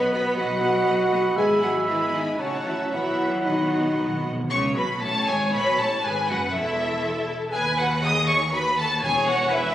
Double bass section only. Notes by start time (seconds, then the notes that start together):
Already playing: B1
0.38 B1
0.88 B1
1.37 G#1
2.39 A1
2.92 B1
4.51 C#2
4.76 B1
5.02 A1
5.28 G#1
5.54 B1
5.79 A1
6.04 G#1
6.30 F#1
6.55 E1
7.54 D#2
9.04 E1